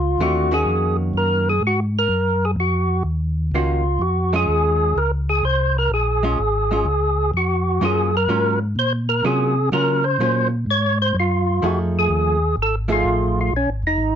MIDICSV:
0, 0, Header, 1, 4, 480
1, 0, Start_track
1, 0, Key_signature, -5, "minor"
1, 0, Tempo, 476190
1, 193, Time_signature, 4, 2, 24, 8
1, 14267, End_track
2, 0, Start_track
2, 0, Title_t, "Tonewheel organ"
2, 0, Program_c, 0, 16
2, 0, Note_on_c, 0, 65, 76
2, 218, Note_off_c, 0, 65, 0
2, 224, Note_on_c, 0, 66, 78
2, 539, Note_off_c, 0, 66, 0
2, 543, Note_on_c, 0, 68, 79
2, 976, Note_off_c, 0, 68, 0
2, 1183, Note_on_c, 0, 70, 90
2, 1499, Note_off_c, 0, 70, 0
2, 1507, Note_on_c, 0, 68, 75
2, 1641, Note_off_c, 0, 68, 0
2, 1682, Note_on_c, 0, 66, 79
2, 1816, Note_off_c, 0, 66, 0
2, 2002, Note_on_c, 0, 70, 81
2, 2469, Note_on_c, 0, 68, 79
2, 2473, Note_off_c, 0, 70, 0
2, 2533, Note_off_c, 0, 68, 0
2, 2621, Note_on_c, 0, 66, 68
2, 3056, Note_off_c, 0, 66, 0
2, 3580, Note_on_c, 0, 65, 63
2, 4047, Note_on_c, 0, 66, 76
2, 4062, Note_off_c, 0, 65, 0
2, 4371, Note_off_c, 0, 66, 0
2, 4392, Note_on_c, 0, 68, 98
2, 5017, Note_on_c, 0, 70, 83
2, 5033, Note_off_c, 0, 68, 0
2, 5156, Note_off_c, 0, 70, 0
2, 5336, Note_on_c, 0, 68, 76
2, 5491, Note_off_c, 0, 68, 0
2, 5493, Note_on_c, 0, 72, 89
2, 5815, Note_off_c, 0, 72, 0
2, 5830, Note_on_c, 0, 70, 77
2, 5963, Note_off_c, 0, 70, 0
2, 5983, Note_on_c, 0, 68, 75
2, 7370, Note_off_c, 0, 68, 0
2, 7428, Note_on_c, 0, 66, 66
2, 7906, Note_off_c, 0, 66, 0
2, 7910, Note_on_c, 0, 68, 82
2, 8223, Note_off_c, 0, 68, 0
2, 8234, Note_on_c, 0, 70, 85
2, 8663, Note_off_c, 0, 70, 0
2, 8859, Note_on_c, 0, 72, 92
2, 8998, Note_off_c, 0, 72, 0
2, 9162, Note_on_c, 0, 70, 73
2, 9324, Note_off_c, 0, 70, 0
2, 9331, Note_on_c, 0, 68, 78
2, 9770, Note_off_c, 0, 68, 0
2, 9810, Note_on_c, 0, 70, 78
2, 10121, Note_on_c, 0, 72, 90
2, 10133, Note_off_c, 0, 70, 0
2, 10565, Note_off_c, 0, 72, 0
2, 10790, Note_on_c, 0, 73, 86
2, 11072, Note_off_c, 0, 73, 0
2, 11107, Note_on_c, 0, 72, 88
2, 11255, Note_off_c, 0, 72, 0
2, 11286, Note_on_c, 0, 65, 77
2, 11749, Note_on_c, 0, 66, 85
2, 11753, Note_off_c, 0, 65, 0
2, 11885, Note_off_c, 0, 66, 0
2, 12083, Note_on_c, 0, 68, 85
2, 12657, Note_off_c, 0, 68, 0
2, 12725, Note_on_c, 0, 69, 81
2, 12857, Note_off_c, 0, 69, 0
2, 13028, Note_on_c, 0, 65, 85
2, 13503, Note_off_c, 0, 65, 0
2, 13515, Note_on_c, 0, 65, 69
2, 13644, Note_off_c, 0, 65, 0
2, 13673, Note_on_c, 0, 61, 75
2, 13808, Note_off_c, 0, 61, 0
2, 13980, Note_on_c, 0, 63, 91
2, 14267, Note_off_c, 0, 63, 0
2, 14267, End_track
3, 0, Start_track
3, 0, Title_t, "Hollow-body jazz guitar"
3, 0, Program_c, 1, 26
3, 207, Note_on_c, 1, 50, 53
3, 210, Note_on_c, 1, 57, 61
3, 214, Note_on_c, 1, 60, 55
3, 216, Note_on_c, 1, 65, 62
3, 489, Note_off_c, 1, 50, 0
3, 490, Note_off_c, 1, 57, 0
3, 492, Note_off_c, 1, 60, 0
3, 493, Note_off_c, 1, 65, 0
3, 517, Note_on_c, 1, 51, 56
3, 521, Note_on_c, 1, 58, 54
3, 526, Note_on_c, 1, 61, 58
3, 527, Note_on_c, 1, 66, 61
3, 1540, Note_off_c, 1, 51, 0
3, 1542, Note_off_c, 1, 58, 0
3, 1545, Note_off_c, 1, 61, 0
3, 1545, Note_off_c, 1, 66, 0
3, 3574, Note_on_c, 1, 51, 44
3, 3580, Note_on_c, 1, 58, 49
3, 3583, Note_on_c, 1, 61, 45
3, 3585, Note_on_c, 1, 66, 46
3, 3853, Note_off_c, 1, 51, 0
3, 3857, Note_off_c, 1, 58, 0
3, 3858, Note_off_c, 1, 61, 0
3, 3859, Note_off_c, 1, 66, 0
3, 4365, Note_on_c, 1, 56, 57
3, 4368, Note_on_c, 1, 61, 65
3, 4375, Note_on_c, 1, 65, 61
3, 4969, Note_off_c, 1, 56, 0
3, 4970, Note_off_c, 1, 61, 0
3, 4974, Note_off_c, 1, 65, 0
3, 6281, Note_on_c, 1, 56, 54
3, 6292, Note_on_c, 1, 61, 54
3, 6294, Note_on_c, 1, 65, 59
3, 6423, Note_off_c, 1, 56, 0
3, 6428, Note_off_c, 1, 61, 0
3, 6429, Note_off_c, 1, 65, 0
3, 6765, Note_on_c, 1, 56, 47
3, 6771, Note_on_c, 1, 61, 45
3, 6781, Note_on_c, 1, 65, 52
3, 6905, Note_off_c, 1, 56, 0
3, 6908, Note_off_c, 1, 61, 0
3, 6912, Note_off_c, 1, 65, 0
3, 7875, Note_on_c, 1, 54, 59
3, 7881, Note_on_c, 1, 61, 57
3, 7886, Note_on_c, 1, 58, 65
3, 7889, Note_on_c, 1, 65, 69
3, 8164, Note_off_c, 1, 54, 0
3, 8167, Note_off_c, 1, 61, 0
3, 8170, Note_off_c, 1, 58, 0
3, 8171, Note_off_c, 1, 65, 0
3, 8353, Note_on_c, 1, 54, 55
3, 8357, Note_on_c, 1, 58, 49
3, 8361, Note_on_c, 1, 65, 58
3, 8363, Note_on_c, 1, 61, 58
3, 8643, Note_off_c, 1, 54, 0
3, 8645, Note_off_c, 1, 58, 0
3, 8647, Note_off_c, 1, 65, 0
3, 8648, Note_off_c, 1, 61, 0
3, 9320, Note_on_c, 1, 54, 48
3, 9321, Note_on_c, 1, 61, 55
3, 9324, Note_on_c, 1, 58, 53
3, 9334, Note_on_c, 1, 65, 55
3, 9606, Note_off_c, 1, 54, 0
3, 9607, Note_off_c, 1, 61, 0
3, 9609, Note_off_c, 1, 58, 0
3, 9614, Note_off_c, 1, 65, 0
3, 9800, Note_on_c, 1, 54, 53
3, 9807, Note_on_c, 1, 58, 51
3, 9807, Note_on_c, 1, 61, 52
3, 9810, Note_on_c, 1, 65, 55
3, 10086, Note_off_c, 1, 54, 0
3, 10090, Note_off_c, 1, 58, 0
3, 10090, Note_off_c, 1, 61, 0
3, 10091, Note_off_c, 1, 65, 0
3, 10285, Note_on_c, 1, 54, 46
3, 10288, Note_on_c, 1, 58, 52
3, 10291, Note_on_c, 1, 61, 54
3, 10295, Note_on_c, 1, 65, 54
3, 10569, Note_off_c, 1, 54, 0
3, 10570, Note_off_c, 1, 58, 0
3, 10572, Note_off_c, 1, 61, 0
3, 10573, Note_off_c, 1, 65, 0
3, 11718, Note_on_c, 1, 53, 56
3, 11722, Note_on_c, 1, 57, 50
3, 11731, Note_on_c, 1, 63, 55
3, 11731, Note_on_c, 1, 68, 62
3, 12452, Note_off_c, 1, 53, 0
3, 12454, Note_off_c, 1, 57, 0
3, 12458, Note_off_c, 1, 68, 0
3, 12459, Note_off_c, 1, 63, 0
3, 12986, Note_on_c, 1, 53, 57
3, 12991, Note_on_c, 1, 57, 60
3, 12996, Note_on_c, 1, 63, 63
3, 13001, Note_on_c, 1, 68, 72
3, 13597, Note_off_c, 1, 53, 0
3, 13599, Note_off_c, 1, 57, 0
3, 13602, Note_off_c, 1, 63, 0
3, 13604, Note_off_c, 1, 68, 0
3, 14267, End_track
4, 0, Start_track
4, 0, Title_t, "Tonewheel organ"
4, 0, Program_c, 2, 16
4, 0, Note_on_c, 2, 37, 85
4, 174, Note_off_c, 2, 37, 0
4, 185, Note_on_c, 2, 39, 63
4, 655, Note_off_c, 2, 39, 0
4, 662, Note_on_c, 2, 41, 72
4, 1134, Note_off_c, 2, 41, 0
4, 1145, Note_on_c, 2, 42, 72
4, 1616, Note_off_c, 2, 42, 0
4, 1627, Note_on_c, 2, 44, 79
4, 2097, Note_off_c, 2, 44, 0
4, 2105, Note_on_c, 2, 42, 72
4, 2576, Note_off_c, 2, 42, 0
4, 2581, Note_on_c, 2, 41, 83
4, 3054, Note_off_c, 2, 41, 0
4, 3062, Note_on_c, 2, 39, 73
4, 3534, Note_off_c, 2, 39, 0
4, 3544, Note_on_c, 2, 37, 79
4, 4016, Note_off_c, 2, 37, 0
4, 4023, Note_on_c, 2, 41, 76
4, 4495, Note_off_c, 2, 41, 0
4, 4511, Note_on_c, 2, 39, 84
4, 4979, Note_off_c, 2, 39, 0
4, 4994, Note_on_c, 2, 37, 71
4, 5461, Note_off_c, 2, 37, 0
4, 5474, Note_on_c, 2, 36, 87
4, 5941, Note_off_c, 2, 36, 0
4, 5952, Note_on_c, 2, 34, 76
4, 6420, Note_off_c, 2, 34, 0
4, 6438, Note_on_c, 2, 32, 77
4, 6903, Note_off_c, 2, 32, 0
4, 6909, Note_on_c, 2, 37, 65
4, 7378, Note_off_c, 2, 37, 0
4, 7395, Note_on_c, 2, 41, 69
4, 7861, Note_off_c, 2, 41, 0
4, 7877, Note_on_c, 2, 42, 69
4, 8342, Note_off_c, 2, 42, 0
4, 8357, Note_on_c, 2, 44, 71
4, 8822, Note_off_c, 2, 44, 0
4, 8829, Note_on_c, 2, 46, 74
4, 9298, Note_off_c, 2, 46, 0
4, 9314, Note_on_c, 2, 48, 78
4, 9780, Note_off_c, 2, 48, 0
4, 9797, Note_on_c, 2, 49, 72
4, 10262, Note_off_c, 2, 49, 0
4, 10269, Note_on_c, 2, 46, 79
4, 10738, Note_off_c, 2, 46, 0
4, 10748, Note_on_c, 2, 44, 82
4, 11217, Note_off_c, 2, 44, 0
4, 11234, Note_on_c, 2, 42, 80
4, 11700, Note_off_c, 2, 42, 0
4, 11719, Note_on_c, 2, 41, 71
4, 12182, Note_off_c, 2, 41, 0
4, 12191, Note_on_c, 2, 39, 82
4, 12657, Note_off_c, 2, 39, 0
4, 12671, Note_on_c, 2, 32, 71
4, 13137, Note_off_c, 2, 32, 0
4, 13148, Note_on_c, 2, 33, 83
4, 13616, Note_off_c, 2, 33, 0
4, 13629, Note_on_c, 2, 34, 69
4, 13781, Note_on_c, 2, 32, 45
4, 13786, Note_off_c, 2, 34, 0
4, 13939, Note_on_c, 2, 29, 68
4, 13946, Note_off_c, 2, 32, 0
4, 14093, Note_on_c, 2, 32, 81
4, 14094, Note_off_c, 2, 29, 0
4, 14267, Note_off_c, 2, 32, 0
4, 14267, End_track
0, 0, End_of_file